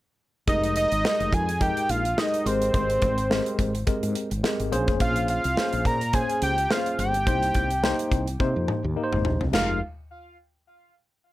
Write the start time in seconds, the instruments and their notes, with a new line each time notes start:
0.47 fretless electric bass F1, tine electric piano G#3 D#4 G4 A#4, analog synth lead D#5, kick, closed hi-hat
0.64 closed hi-hat
0.76 analog synth lead D#5, closed hi-hat
0.92 fretless electric bass G#1, closed hi-hat
1.04 tine electric piano G3 D#4 G4 A#4, snare
1.10 tine electric piano G#3
1.20 fretless electric bass F1, closed hi-hat
1.33 fretless electric bass F2, analog synth lead G#5, kick, closed hi-hat
1.49 closed hi-hat
1.60 tine electric piano G#3 D#4 G4 A#4, analog synth lead G5, kick, closed hi-hat
1.77 closed hi-hat
1.89 fretless electric bass A#1, analog synth lead F5, closed hi-hat
2.05 closed hi-hat
2.17 tine electric piano G#3 D#4 G4 A#4, analog synth lead D#5, snare
2.34 closed hi-hat
2.45 fretless electric bass G#1, tine electric piano G#3 C4 G4 A#4, analog synth lead C5, closed hi-hat
2.62 closed hi-hat
2.74 fretless electric bass G#1, kick, closed hi-hat
2.90 closed hi-hat
3.02 fretless electric bass G#1, kick, closed hi-hat
3.18 closed hi-hat
3.30 tine electric piano G#3 C4 G4 A#4, snare
3.46 closed hi-hat
3.59 fretless electric bass G#1, kick, closed hi-hat
3.75 closed hi-hat
3.87 tine electric piano G#3 C4 G4 A#4, muted fretless electric bass stroke, kick, closed hi-hat
4.03 fretless electric bass G#2, closed hi-hat
4.15 closed hi-hat
4.31 fretless electric bass G#1, closed hi-hat
4.44 tine electric piano G#3 C4 G4 A#4, snare
4.60 fretless electric bass G#1, closed hi-hat
4.72 fretless electric bass A#1, tine electric piano A#3 C#4 G#4 C5, closed hi-hat
4.88 fretless electric bass F1, kick, closed hi-hat
5.00 fretless electric bass A#1, analog synth lead F5, kick, closed hi-hat
5.16 closed hi-hat
5.28 analog synth lead F5, closed hi-hat
5.44 fretless electric bass C2, closed hi-hat
5.57 tine electric piano A#3 C#4 G#4 C5, snare
5.73 fretless electric bass A#1, closed hi-hat
5.85 fretless electric bass A#2, analog synth lead A#5, kick, closed hi-hat
6.01 closed hi-hat
6.13 tine electric piano A#3 C#4 G#4 C5, analog synth lead G#5, kick, closed hi-hat
6.30 closed hi-hat
6.42 fretless electric bass C#2, analog synth lead G5, closed hi-hat
6.58 closed hi-hat
6.70 tine electric piano A#3 C4 G#4 C5, analog synth lead F5, snare
6.77 tine electric piano C#4
6.86 closed hi-hat
6.99 fretless electric bass G1, analog synth lead G5, closed hi-hat
7.14 closed hi-hat
7.26 fretless electric bass C2, tine electric piano A#3 D#4 G4 C5, kick, closed hi-hat
7.43 closed hi-hat
7.54 fretless electric bass C2, kick, closed hi-hat
7.70 closed hi-hat
7.83 tine electric piano A#3 D#4 G4 C5, snare
7.99 closed hi-hat
8.12 fretless electric bass C2, kick, closed hi-hat
8.28 closed hi-hat
8.39 fretless electric bass C3, tine electric piano A#3 D#4 G4 C5, kick, high tom
8.56 fretless electric bass F2
8.68 mid tom
8.84 fretless electric bass D#2
8.96 tine electric piano A#3 D#4 G4 A#4
9.03 tine electric piano C5
9.13 fretless electric bass G#1, mid tom
9.25 fretless electric bass A#1, floor tom
9.41 fretless electric bass C2, floor tom
9.53 fretless electric bass F1, tine electric piano G#3 D#4 G4 A#4, analog synth lead F5, snare, china